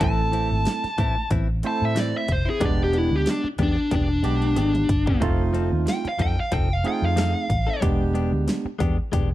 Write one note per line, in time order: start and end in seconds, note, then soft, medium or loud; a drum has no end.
0.00 0.48 A1 loud
0.00 0.21 E3 medium
0.00 0.66 A3 medium
0.00 0.85 A3 medium
0.00 0.65 C4 medium
0.00 0.21 C4 medium
0.00 0.85 C4 medium
0.00 0.21 E4 medium
0.00 0.66 E4 medium
0.00 0.85 E4 medium
0.00 0.66 A4 medium
0.00 0.85 A4 medium
0.00 kick loud
0.00 closed hi-hat medium
0.04 1.29 A5 medium
0.32 0.51 E3 medium
0.32 0.51 C4 medium
0.32 0.50 E4 medium
0.32 closed hi-hat medium
0.51 0.65 G#1 medium
0.51 muted clean electric guitar stroke soft
0.65 muted clean electric guitar stroke soft
0.65 snare loud
0.65 closed hi-hat medium
0.84 muted clean electric guitar stroke soft
0.84 muted fingered electric bass stroke soft
0.84 snare soft
0.84 closed hi-hat soft
0.98 1.15 A2 medium
0.98 1.16 E3 medium
0.98 1.16 C4 medium
0.98 1.15 E4 medium
0.98 kick medium
0.98 closed hi-hat medium
1.31 1.61 A1 loud
1.31 1.49 E3 medium
1.31 1.49 C4 medium
1.31 1.48 E4 medium
1.31 kick medium
1.31 closed hi-hat medium
1.63 2.14 A3 medium
1.63 2.26 A3 medium
1.63 2.14 C4 medium
1.63 2.26 C4 medium
1.63 2.14 E4 medium
1.63 2.26 E4 medium
1.63 2.14 A4 medium
1.63 2.26 C5 medium
1.63 1.83 A5 medium
1.63 muted clean electric guitar stroke soft
1.63 closed hi-hat medium
1.82 2.12 A2 medium
1.82 1.97 E5 medium
1.95 2.14 E3 medium
1.95 2.14 C4 medium
1.95 2.13 E4 medium
1.95 snare loud
1.95 closed hi-hat medium
1.99 2.15 D5 medium
2.14 2.30 E5 medium
2.14 muted clean electric guitar stroke soft
2.28 2.46 F1 medium
2.28 2.48 C5 medium
2.28 muted clean electric guitar stroke soft
2.28 kick medium
2.28 closed hi-hat medium
2.45 2.60 C4 soft
2.45 2.60 E4 medium
2.50 2.62 G#4 medium
2.60 3.09 E1 medium
2.60 3.26 G3 medium
2.60 3.45 G#3 medium
2.60 2.82 G#3 medium
2.60 3.26 G#3 medium
2.60 2.82 B3 medium
2.60 3.45 B3 medium
2.60 2.82 D4 medium
2.60 3.45 D4 medium
2.60 3.26 D4 medium
2.60 3.26 G4 medium
2.60 2.82 G4 loud
2.60 3.45 G4 medium
2.60 kick loud
2.60 closed hi-hat medium
2.65 2.81 D5 medium
2.84 2.98 G4 medium
2.92 3.11 G#3 medium
2.92 3.11 B3 medium
2.92 3.11 D4 medium
2.92 3.10 G4 medium
2.92 closed hi-hat medium
2.98 3.16 E4 medium
3.11 3.25 D2 medium
3.11 muted clean electric guitar stroke soft
3.16 3.28 G4 medium
3.26 muted clean electric guitar stroke soft
3.26 snare loud
3.26 closed hi-hat medium
3.30 3.46 D4 medium
3.44 muted clean electric guitar stroke soft
3.44 muted fingered electric bass stroke soft
3.58 3.76 E2 loud
3.58 3.77 G#3 medium
3.58 3.77 B3 medium
3.58 3.77 D4 medium
3.58 3.76 G4 medium
3.58 kick medium
3.58 closed hi-hat medium
3.63 3.92 D4 loud
3.77 muted clean electric guitar stroke soft
3.91 4.22 E1 loud
3.91 4.10 G#3 medium
3.91 4.10 B3 medium
3.91 4.09 D4 medium
3.91 4.08 G4 medium
3.91 kick medium
3.91 closed hi-hat medium
3.95 5.20 D4 loud
4.10 muted clean electric guitar stroke soft
4.23 4.53 B1 medium
4.23 4.75 G3 medium
4.23 4.85 G#3 medium
4.23 4.75 G#3 medium
4.23 4.86 B3 medium
4.23 4.86 D4 medium
4.23 4.75 D4 medium
4.23 4.75 G4 medium
4.23 4.86 G4 medium
4.23 muted clean electric guitar stroke soft
4.23 closed hi-hat medium
4.42 closed hi-hat soft
4.56 4.86 G#1 medium
4.56 4.74 G#3 medium
4.56 4.74 B3 medium
4.56 4.74 D4 medium
4.56 4.73 G4 medium
4.56 closed hi-hat medium
4.56 high tom medium
4.74 muted clean electric guitar stroke soft
4.74 closed hi-hat soft
4.74 mid tom medium
4.89 5.18 G1 medium
4.89 muted clean electric guitar stroke soft
4.89 kick medium
4.89 closed hi-hat medium
5.06 5.20 B3 soft
5.06 5.21 D4 medium
5.06 5.21 G4 soft
5.06 kick medium
5.20 5.70 F1 medium
5.20 5.42 F3 medium
5.20 5.87 F3 medium
5.20 6.05 A3 medium
5.20 5.87 A3 medium
5.20 5.42 C4 medium
5.20 6.06 C4 medium
5.20 5.42 D#4 medium
5.20 5.87 D#4 medium
5.20 6.06 D#4 medium
5.20 5.87 F4 medium
5.20 6.06 F4 loud
5.20 5.43 A4 loud
5.20 kick loud
5.20 closed hi-hat medium
5.53 5.72 F3 medium
5.53 5.71 C4 medium
5.53 5.71 D#4 medium
5.53 5.70 A4 medium
5.53 closed hi-hat medium
5.71 5.86 D#2 medium
5.71 muted clean electric guitar stroke soft
5.86 6.06 G5 medium
5.86 muted clean electric guitar stroke soft
5.86 snare loud
5.86 closed hi-hat medium
6.05 6.21 F5 medium
6.05 muted clean electric guitar stroke soft
6.05 muted fingered electric bass stroke soft
6.05 closed hi-hat soft
6.19 6.37 F2 loud
6.19 6.37 F3 medium
6.19 6.38 C4 medium
6.19 6.37 D#4 medium
6.19 6.36 A4 medium
6.19 6.38 G5 loud
6.19 kick medium
6.19 closed hi-hat medium
6.37 6.53 F5 medium
6.37 muted clean electric guitar stroke soft
6.52 6.83 F1 medium
6.52 6.70 F3 medium
6.52 6.70 C4 medium
6.52 6.69 D#4 medium
6.52 6.69 A4 medium
6.52 6.73 G5 medium
6.52 kick medium
6.52 closed hi-hat medium
6.70 6.86 F5 medium
6.70 muted clean electric guitar stroke soft
6.84 7.36 F3 medium
6.84 7.46 A3 medium
6.84 7.36 A3 medium
6.84 7.46 C4 medium
6.84 7.47 D#4 medium
6.84 7.36 D#4 medium
6.84 7.36 F4 medium
6.84 7.47 G#4 medium
6.84 7.04 G5 loud
6.84 muted clean electric guitar stroke soft
6.84 closed hi-hat medium
7.02 7.33 F2 medium
7.02 7.18 F5 medium
7.16 7.35 F3 medium
7.16 7.34 C4 medium
7.16 7.34 D#4 medium
7.16 7.33 A4 medium
7.16 7.81 F5 loud
7.16 snare loud
7.16 closed hi-hat medium
7.34 muted clean electric guitar stroke soft
7.49 7.67 A1 medium
7.49 muted clean electric guitar stroke soft
7.49 kick medium
7.49 closed hi-hat medium
7.67 7.81 C4 soft
7.67 7.82 D#4 soft
7.67 7.82 A4 medium
7.81 8.30 E1 loud
7.81 8.48 G3 medium
7.81 8.03 G#3 medium
7.81 8.66 G#3 medium
7.81 8.48 G#3 medium
7.81 8.03 B3 medium
7.81 8.66 B3 medium
7.81 8.03 D4 medium
7.81 8.66 D4 medium
7.81 8.48 D4 medium
7.81 8.03 G4 medium
7.81 8.48 G4 medium
7.81 8.67 G4 medium
7.81 kick loud
7.81 closed hi-hat medium
8.14 8.33 G#3 medium
8.14 8.33 B3 medium
8.14 8.32 D4 medium
8.14 8.31 G4 medium
8.14 closed hi-hat medium
8.32 8.46 D2 medium
8.32 muted clean electric guitar stroke soft
8.47 muted clean electric guitar stroke soft
8.47 snare loud
8.47 closed hi-hat medium
8.65 muted fingered electric bass stroke soft
8.65 muted clean electric guitar stroke soft
8.79 8.97 E2 loud
8.79 8.98 G#3 medium
8.79 8.98 B3 medium
8.79 8.97 D4 medium
8.79 8.97 G4 medium
8.79 kick medium
8.79 closed hi-hat medium
8.98 muted clean electric guitar stroke soft
9.12 9.34 E1 loud
9.12 9.30 G#3 medium
9.12 9.31 B3 medium
9.12 9.30 D4 loud
9.12 9.29 G4 loud
9.12 kick medium
9.12 closed hi-hat loud
9.31 muted clean electric guitar stroke medium